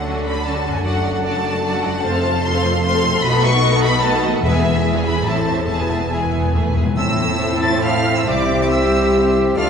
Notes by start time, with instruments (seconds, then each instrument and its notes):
Already playing: double bass section D2, harp D3 A3 D4 C#5, cello section D3, french horn section C#4 A4, violin section F#5
0.05 viola section F#3 C#4, violin section F#4 A4
0.16 viola section A3 D4, violin section F#4 A4
0.25 viola section F#3 C#4, violin section F#4 A4 B5
0.35 viola section A3 D4, violin section F#4 A4
0.45 viola section F#3 C#4, french horn section C#4 A4, violin section F#4 A4 A5
0.54 viola section A3 D4, violin section F#4 A4
0.64 harp F#2, viola section F#3 C#4, violin section F#4 A4
0.71 harp A3, viola section A3 D4
0.76 harp D4, violin section F#4 A4 G#5
0.80 viola section F#3 D4, harp D5
0.85 double bass section F#1, cello section F#2, french horn section D4 A4, violin section F#4 D5 F#5
0.94 viola section A3 F#4, violin section A4 F#5
1.04 viola section F#3 D4, violin section F#4 D5
1.14 viola section A3 F#4, violin section A4 F#5
1.23 viola section F#3 D4, french horn section D4 A4, violin section F#4 D5 A5
1.34 viola section A3 F#4, violin section A4 F#5
1.44 viola section F#3 D4, violin section F#4 D5
1.53 viola section A3 F#4, violin section A4 F#5
1.63 viola section F#3 D4, violin section F#4 D5
1.73 viola section A3 F#4, violin section A4 F#5
1.82 harp F2, viola section F#3 D4, violin section F#4 D5 F#5
1.89 harp A3, viola section A3 F#4
1.93 harp F4, violin section A4 F#5
1.98 harp C5
2.03 double bass section F1, cello section F2, viola section A3 F4, french horn section C4 A4, violin section C5 A5
2.12 viola section C4 A4, violin section A4 F5
2.23 viola section A3 F4, violin section C5
2.32 viola section C4 A4, violin section A4 F5
2.43 viola section A3 F4, french horn section C4 A4, violin section C5 C6
2.53 viola section C4 A4, violin section A4 F5
2.63 viola section A3 F4, violin section C5
2.73 viola section C4 A4, violin section A4 F5
2.82 viola section A3 F4, french horn section C4 A4, violin section C5 C6
2.93 viola section C4 A4, violin section A4 F5
3.03 harp B2, viola section A3 F4, violin section C5
3.08 harp A3
3.13 viola section C4 A4, harp D#4, violin section A4 F5
3.17 harp B4
3.23 double bass section B1, cello section B2, viola section A3 F#4, french horn section B3 A4, violin section B4 D#5 B5
3.32 viola section B3 D#4, violin section A4 F#5
3.42 viola section A3 F#4, violin section B4 D#5 C#6
3.53 viola section B3 D#4, violin section A4 F#5
3.63 viola section A3 F#4, violin section B4 D#5
3.72 viola section B3 D#4, violin section A4 F#5
3.82 viola section A3 F#4, violin section B4 D#5 B5
3.92 viola section B3 D#4, violin section A4 F#5
4.02 viola section A3 F#4, french horn section B3 A4, violin section B4 D#5 A5
4.12 viola section B3 D#4, violin section A4 F#5
4.22 harp E3, viola section A3 F#4, violin section B4 D#5
4.29 harp G#3
4.33 viola section B3 D#4, harp E4, violin section A4 F#5
4.38 harp B4
4.43 double bass section E1, timpani E2, cello section E2, viola section G#3 E4, french horn section B3 G#4, violin section B4 E5
4.54 viola section B3 G#4, violin section G#4 G#5
4.64 viola section G#3 E4, violin section B4 E5
4.74 viola section B3 G#4, violin section G#4 G#5
4.84 viola section G#3 E4, violin section B4 E5
4.95 viola section B3 G#4, violin section G#4 G#5
5.04 harp A2, viola section G#3 E4, violin section B4 E5 B5
5.12 harp A3, viola section B3 G#4, violin section G#4 G#5
5.16 harp E4
5.21 harp C5, violin section A5
5.25 double bass section A1, cello section A2, viola section A3 E4, french horn section C4 E4, violin section C5 E5
5.36 viola section C4, violin section A4 C5
5.46 harp E2, viola section A3 E4, violin section C5 E5
5.54 harp B3, viola section C4
5.58 harp E4, violin section A4 C5
5.63 harp B4
5.68 double bass section E1, timpani E2, cello section E2, viola section G#3 E4, french horn section B3 E4, violin section G#4 E5 A5
5.75 timpani E2, viola section B3 G#4
5.80 timpani E2, violin section B4 G#5
5.90 timpani E2, viola section G#3 E4, violin section G#4 E5
5.97 timpani E2, viola section B3 G#4, violin section B4 G#5
6.05 timpani E2
6.10 timpani E2, viola section G#3, french horn section B3 E4, violin section G#4 E5 G#5
6.19 timpani E2, violin section B4 G#5
6.26 timpani E2
6.32 timpani E2, viola section B3, violin section G#4 E5
6.40 timpani E2, violin section B4 G#5
6.48 timpani E2
6.53 timpani E2, viola section A3, violin section G#4 E5
6.62 timpani E2, violin section B4 G#5
6.69 timpani E2
6.74 timpani E2, viola section G#3, violin section G#4 E5
6.84 timpani E2, violin section B4 G#5
6.95 double bass section A1, harp A2, timpani A2, cello section A2, bassoon C4, french horn section C4 E4, viola section C4 E4, clarinet E4, violin section A4 C5 E6, flute E5, oboe E5
7.18 harp E3
7.40 harp E4
7.62 harp A4, oboe A5, violin section A6
7.84 harp E4, oboe F5, violin section F6
8.06 harp A3
8.17 oboe E5, violin section E6
8.28 cello section C2, double bass section C2, harp C3, clarinet G4, violin section G4 D6, oboe D5
8.49 harp C4
8.61 oboe D5, violin section D6
8.70 harp E4, oboe E5, violin section E6
8.92 harp G4
9.14 harp E4
9.36 harp G3
9.56 double bass section D2, cello section D2, harp D3, viola section A3 D4, french horn section A3 D4, bassoon A3, clarinet F4, violin section F4 D5 F6, flute D5, oboe F5